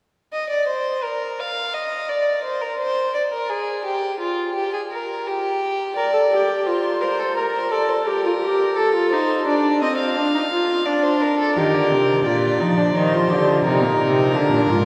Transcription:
0.33 violin D#5
0.50 violin D5
0.68 violin C5
1.04 violin A#4
1.39 violin F5
1.74 violin D#5
2.09 violin D5
2.44 violin C5
2.62 violin A#4
2.80 violin C5
3.14 violin D5
3.32 violin A#4
3.49 violin G#4
3.85 violin G4
4.20 violin F4
4.55 violin G4
4.73 violin G#4
4.91 violin A#4
5.27 violin G4
5.97 viola A#4, violin D5
6.14 viola A4
6.32 viola G4
6.66 viola F4, violin C5
7.01 violin A#4, viola C5
7.20 violin A4
7.37 viola A#4, violin A#4
7.55 violin C5
7.72 viola A4, violin D5
7.89 violin C5
8.06 viola G4, violin A#4
8.25 viola F4
8.42 viola G4
8.76 violin A4, viola A4
8.95 viola F4
9.12 viola D#4, violin C5
9.47 viola D4, violin D5
9.82 viola C4, violin D#5
9.99 violin F5
10.17 viola D4
10.35 viola D#4
10.52 viola F4
10.86 viola D4, violin D5
11.03 violin C5
11.21 violin A#4
11.39 violin A4
11.56 cello D#3, viola G4, violin A#4
11.74 cello D3
11.91 cello C3
12.25 cello A#2, viola F4, violin D5
12.60 cello F3, viola D#4
12.78 viola D4
12.95 cello D#3, viola D#4, violin C5
13.13 viola F4
13.30 cello D3, viola G4
13.48 viola F4
13.65 cello C3, viola D#4, violin A#4
13.82 cello A#2
14.00 cello C3
14.35 cello D3, viola D4
14.52 cello A#2
14.70 cello G#2, viola F4

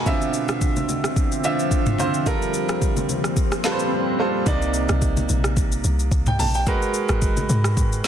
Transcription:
Already playing: grand piano G#5
0.06 grand piano D3 C4 F4 E5, ambient pad D3 F3 C4 E5, kick, swell, low conga, shaker
0.22 shaker
0.33 shaker
0.48 cross-stick, shaker
0.61 kick, shaker
0.76 high conga, shaker
0.89 high conga, shaker
1.04 cross-stick, shaker
1.16 kick, shaker
1.32 shaker
1.44 grand piano D3 C4 F4 E5, shaker
1.59 shaker
1.71 kick, shaker
1.86 mid tom, high conga, shaker
1.98 grand piano D3 C4 F4 C5, high conga, low conga, shaker
2.14 shaker
2.26 ambient pad F3 G3 A#3 G4, grand piano G3 F4 A4 A#4, kick, low conga, shaker
2.42 shaker
2.54 shaker
2.69 cross-stick, shaker
2.82 kick, shaker
2.97 high conga, shaker
3.09 high conga, shaker
3.24 cross-stick, shaker
3.37 kick, shaker
3.52 cross-stick, shaker
3.64 grand piano G3 F4 A4 B4, snare, shaker
3.72 grand piano C5
3.79 shaker
4.19 grand piano G3 F4 A4 C5
4.46 log drum bass C2, grand piano C3 A#3 D#4 D5, kick, low conga, shaker
4.62 shaker
4.74 shaker
4.89 log drum bass C2, cross-stick, shaker
5.02 kick, shaker
5.17 high conga, shaker
5.29 log drum bass A#1, high conga, shaker
5.44 cross-stick, shaker
5.57 kick, shaker
5.72 shaker
5.84 log drum bass C2, shaker
5.99 shaker
6.11 log drum bass C2, kick, shaker
6.26 grand piano G5, mid tom, high conga, shaker
6.39 log drum bass A#1, grand piano A5, open hi-hat, high conga, low conga, shaker
6.54 grand piano G5, shaker
6.67 grand piano G#3 F#4 A#4 B4, kick, low conga, shaker
6.82 shaker
6.94 shaker
7.09 log drum bass G#1, cross-stick, shaker
7.22 kick, shaker
7.37 high conga, shaker
7.49 log drum bass G#2, high conga, shaker
7.64 cross-stick, shaker
7.77 kick, shaker
7.92 shaker
8.04 snare, shaker

